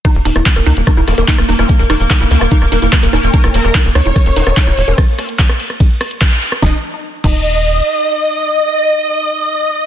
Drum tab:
CC |----------------|----------------|----------------|----------------|
RD |x---x---x---x---|x---x---x---x---|x---x---x---x---|x---x---x---x---|
HH |xxoxxxoxxxoxxxox|xxoxxxoxxxoxxxox|xxoxxxoxxxoxxxox|xxoxxxoxxxoxxxox|
CP |----x-------x---|----x-------xx--|----x-------x---|----x-------xx--|
SD |r--r-r--r-r--r-r|--r-r--r-r--r-r-|-r-r--r-r--r-r--|r-r--r-r--r-r--r|
BD |o---o---o---o---|o---o---o---o---|o---o---o---o---|o---o---o---o---|

CC |------x---------|----------------|
RD |----------------|----------------|
HH |----------------|----------------|
CP |----------------|----------------|
SD |o---------------|----------------|
BD |o-----o---------|----------------|